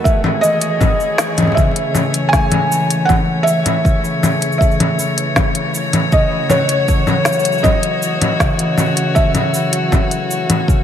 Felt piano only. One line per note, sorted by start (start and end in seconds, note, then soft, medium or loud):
0.04 0.40 E5 medium
0.41 1.60 D#5 loud
1.55 2.34 E5 medium
2.29 3.03 G#5 loud
3.05 3.14 F#5 loud
3.43 4.57 E5 loud
4.58 5.70 E5 medium
6.13 6.52 D#5 medium
6.50 7.68 C#5 loud
7.63 9.21 D#5 loud
9.15 10.84 E5 medium